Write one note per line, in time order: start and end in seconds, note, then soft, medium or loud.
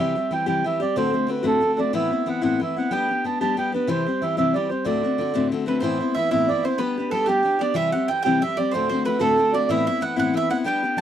0.00 0.15 C3 medium
0.00 0.15 E3 medium
0.00 0.15 G3 medium
0.00 0.15 C4 medium
0.00 0.14 G4 medium
0.00 0.32 E5 medium
0.15 0.30 G3 soft
0.15 0.31 C4 soft
0.15 0.31 G4 soft
0.31 0.46 E3 medium
0.31 0.46 G3 medium
0.31 0.45 C4 medium
0.31 0.45 G4 medium
0.31 0.46 G5 medium
0.46 0.65 C3 medium
0.46 0.63 E3 medium
0.46 0.64 G3 medium
0.46 0.64 C4 medium
0.46 0.64 G4 medium
0.46 0.65 G5 medium
0.64 0.80 E3 medium
0.64 0.81 G3 medium
0.64 0.80 C4 medium
0.64 0.79 G4 medium
0.64 0.81 E5 medium
0.80 0.96 G3 soft
0.80 0.96 C4 soft
0.80 0.95 G4 medium
0.80 0.96 D5 medium
0.96 1.13 D2 medium
0.96 1.13 A2 medium
0.96 1.13 D3 medium
0.96 1.13 A3 medium
0.96 1.12 C4 medium
0.96 1.11 F#4 medium
0.96 1.30 C5 medium
1.12 1.25 D3 soft
1.12 1.27 A3 soft
1.12 1.28 C4 soft
1.12 1.28 F#4 soft
1.27 1.43 D3 medium
1.27 1.43 A3 medium
1.27 1.43 C4 medium
1.27 1.42 F#4 medium
1.31 1.46 B4 medium
1.43 1.62 D2 medium
1.43 1.62 A2 medium
1.43 1.59 D3 medium
1.43 1.60 A3 medium
1.43 1.61 C4 medium
1.43 1.61 F#4 medium
1.43 1.80 A4 loud
1.61 1.77 D3 medium
1.61 1.77 A3 medium
1.61 1.77 C4 medium
1.61 1.76 F#4 medium
1.77 1.93 D3 soft
1.77 1.93 A3 soft
1.77 1.93 C4 medium
1.77 1.93 F#4 medium
1.77 1.93 D5 medium
1.93 2.11 A2 medium
1.93 2.11 E3 medium
1.93 2.11 B3 medium
1.93 2.11 C4 medium
1.93 2.09 E4 medium
1.93 2.28 E5 medium
2.10 2.25 B3 soft
2.10 2.26 C4 soft
2.10 2.26 E4 soft
2.26 2.42 E3 medium
2.26 2.42 B3 medium
2.26 2.41 C4 medium
2.26 2.40 E4 medium
2.26 2.42 F#5 medium
2.42 2.60 A2 medium
2.42 2.59 E3 medium
2.42 2.60 B3 medium
2.42 2.60 C4 medium
2.42 2.59 E4 medium
2.42 2.61 F#5 medium
2.60 2.75 E3 medium
2.60 2.76 B3 medium
2.60 2.76 C4 soft
2.60 2.75 E4 medium
2.60 2.77 E5 medium
2.76 2.90 B3 soft
2.76 2.92 C4 soft
2.76 2.91 E4 medium
2.76 2.92 F#5 medium
2.91 3.08 G3 medium
2.91 3.09 B3 medium
2.91 3.09 D4 medium
2.91 3.07 G4 medium
2.91 3.25 G5 medium
3.09 3.24 B3 soft
3.09 3.25 D4 soft
3.09 3.24 G4 soft
3.24 3.40 G3 medium
3.24 3.40 B3 medium
3.24 3.40 D4 medium
3.24 3.40 G4 medium
3.24 3.39 A5 medium
3.40 3.56 G3 medium
3.40 3.56 B3 medium
3.40 3.57 D4 medium
3.40 3.58 G4 medium
3.40 3.56 A5 loud
3.57 3.72 G3 medium
3.57 3.73 B3 medium
3.57 3.73 D4 medium
3.57 3.71 G4 medium
3.57 3.72 G5 medium
3.72 3.89 B3 soft
3.72 3.89 D4 medium
3.72 3.88 G4 soft
3.72 3.89 B4 medium
3.87 4.05 C3 medium
3.87 4.06 E3 medium
3.87 4.06 G3 medium
3.87 4.06 C4 medium
3.87 4.05 G4 medium
3.87 4.23 C5 medium
4.06 4.21 G3 soft
4.06 4.22 C4 medium
4.06 4.21 G4 soft
4.22 4.37 E3 medium
4.22 4.37 G3 medium
4.22 4.37 C4 medium
4.22 4.36 G4 medium
4.22 4.36 E5 medium
4.37 4.56 C3 medium
4.37 4.53 E3 medium
4.37 4.54 G3 medium
4.37 4.55 C4 medium
4.37 4.54 G4 medium
4.37 4.55 E5 loud
4.54 4.70 E3 medium
4.54 4.70 G3 medium
4.54 4.70 C4 medium
4.54 4.68 G4 medium
4.54 4.70 D5 medium
4.69 4.86 G3 soft
4.69 4.85 C4 medium
4.69 4.85 G4 soft
4.69 4.85 C5 medium
4.85 5.03 D2 medium
4.85 5.03 A2 medium
4.85 5.03 D3 medium
4.85 5.03 A3 medium
4.85 5.03 C4 medium
4.85 5.02 F#4 medium
4.85 5.47 D5 medium
5.03 5.17 D3 soft
5.03 5.19 A3 soft
5.03 5.18 C4 soft
5.03 5.18 F#4 soft
5.18 5.34 D3 medium
5.18 5.33 A3 medium
5.18 5.34 C4 medium
5.18 5.32 F#4 medium
5.34 5.53 D2 medium
5.34 5.52 A2 medium
5.34 5.50 D3 medium
5.34 5.52 A3 medium
5.34 5.51 C4 medium
5.34 5.51 F#4 medium
5.52 5.67 D3 medium
5.52 5.66 A3 medium
5.52 5.67 C4 medium
5.52 5.65 F#4 medium
5.66 5.82 D3 soft
5.66 5.82 A3 medium
5.66 5.83 C4 medium
5.66 5.82 F#4 medium
5.66 5.83 B4 medium
5.66 5.80 B4 medium
5.80 6.00 A2 medium
5.80 6.00 E3 medium
5.80 6.00 B3 medium
5.80 5.99 C4 medium
5.80 5.98 E4 medium
5.80 6.12 C5 medium
5.80 6.16 C5 medium
5.99 6.16 B3 soft
5.99 6.16 C4 medium
5.99 6.15 E4 medium
6.15 6.31 E3 medium
6.15 6.31 B3 medium
6.15 6.30 C4 medium
6.15 6.30 E4 medium
6.15 6.29 E5 medium
6.15 6.30 E5 medium
6.31 6.50 A2 medium
6.31 6.47 E3 medium
6.31 6.48 B3 medium
6.31 6.49 C4 medium
6.31 6.48 E4 medium
6.31 6.65 E5 medium
6.31 6.49 E5 loud
6.48 6.64 E3 medium
6.48 6.64 B3 medium
6.48 6.63 C4 medium
6.48 6.62 E4 medium
6.48 6.64 D5 medium
6.63 6.77 B3 soft
6.63 6.79 C4 medium
6.63 6.79 E4 medium
6.63 6.80 C5 medium
6.63 6.78 C5 medium
6.78 6.96 G3 medium
6.78 6.97 B3 medium
6.78 6.97 D4 medium
6.78 6.96 G4 medium
6.78 7.09 B4 medium
6.78 7.13 B4 medium
6.98 7.12 B3 soft
6.98 7.13 D4 soft
6.98 7.13 G4 medium
7.10 7.28 G3 medium
7.10 7.28 B3 medium
7.10 7.27 D4 medium
7.10 7.27 A4 medium
7.10 7.26 A4 medium
7.15 7.26 G4 medium
7.26 7.42 G3 medium
7.26 7.43 B3 medium
7.26 7.44 D4 medium
7.26 7.57 G4 medium
7.26 7.45 G4 medium
7.26 7.62 G4 medium
7.43 7.60 G3 soft
7.43 7.60 B3 soft
7.43 7.60 D4 medium
7.43 7.58 G4 medium
7.59 7.74 B3 soft
7.59 7.76 D4 medium
7.59 7.75 G4 medium
7.59 7.75 D5 medium
7.74 7.93 C3 medium
7.74 7.93 E3 medium
7.74 7.93 G3 medium
7.74 7.92 C4 medium
7.74 7.91 G4 loud
7.74 7.92 E5 medium
7.74 8.10 E5 medium
7.92 8.08 G3 soft
7.92 8.09 C4 soft
7.92 8.08 G4 soft
7.92 8.07 F#5 medium
8.08 8.24 E3 medium
8.08 8.25 G3 medium
8.08 8.25 C4 medium
8.08 8.24 G4 medium
8.08 8.21 G5 medium
8.08 8.23 G5 medium
8.23 8.42 G3 medium
8.23 8.43 C4 medium
8.23 8.42 G4 medium
8.23 8.41 G5 medium
8.23 8.42 G5 loud
8.27 8.43 C3 medium
8.27 8.40 E3 medium
8.41 8.57 E3 soft
8.41 8.58 G3 medium
8.41 8.58 C4 medium
8.41 8.56 G4 medium
8.41 8.58 E5 medium
8.41 8.56 E5 medium
8.57 8.74 G3 soft
8.57 8.73 C4 medium
8.57 8.73 G4 medium
8.57 8.71 D5 medium
8.57 8.73 D5 medium
8.71 8.90 D2 medium
8.71 8.91 A2 medium
8.71 8.91 D3 medium
8.71 8.90 A3 medium
8.71 8.90 C4 medium
8.71 8.88 C5 medium
8.71 9.03 C5 medium
8.76 8.88 F#4 medium
8.89 9.04 D3 soft
8.89 9.05 A3 soft
8.89 9.06 C4 soft
8.89 9.05 F#4 medium
8.89 9.04 C5 medium
9.05 9.19 D3 medium
9.05 9.19 A3 medium
9.05 9.19 C4 medium
9.05 9.18 F#4 medium
9.05 9.20 B4 medium
9.05 9.22 B4 medium
9.19 9.39 D2 medium
9.19 9.39 A2 medium
9.19 9.36 D3 medium
9.19 9.38 A3 medium
9.19 9.38 C4 medium
9.19 9.38 F#4 medium
9.19 9.54 A4 loud
9.19 9.52 A4 medium
9.37 9.53 D3 medium
9.37 9.54 A3 medium
9.37 9.53 C4 medium
9.37 9.52 F#4 medium
9.53 9.69 D3 soft
9.53 9.69 A3 soft
9.53 9.69 C4 medium
9.53 9.69 F#4 medium
9.53 9.70 D5 medium
9.69 9.87 A2 medium
9.69 9.87 E3 medium
9.69 9.87 B3 medium
9.69 9.86 C4 medium
9.69 9.85 E4 medium
9.69 10.03 E5 medium
9.69 9.86 E5 medium
9.86 10.00 B3 soft
9.86 10.01 C4 soft
9.86 10.02 E4 soft
9.86 10.01 E5 medium
10.01 10.17 E3 medium
10.01 10.16 B3 medium
10.01 10.16 C4 medium
10.01 10.15 E4 medium
10.01 10.16 F#5 medium
10.16 10.35 A2 medium
10.16 10.32 E3 medium
10.16 10.33 B3 medium
10.16 10.34 C4 medium
10.16 10.34 E4 medium
10.16 10.34 F#5 loud
10.16 10.35 F#5 medium
10.34 10.50 E3 medium
10.34 10.50 B3 medium
10.34 10.50 C4 medium
10.34 10.49 E4 medium
10.34 10.49 E5 medium
10.34 10.50 E5 medium
10.50 10.64 B3 soft
10.50 10.65 C4 soft
10.50 10.65 E4 medium
10.50 10.57 F#5 medium
10.50 10.65 F#5 medium
10.64 10.83 G3 medium
10.64 10.83 B3 medium
10.64 10.83 D4 medium
10.64 10.81 G4 medium
10.64 10.99 G5 medium
10.64 10.97 G5 medium
10.83 10.97 B3 soft
10.83 10.98 D4 soft
10.83 10.98 G4 soft
10.97 11.01 G3 medium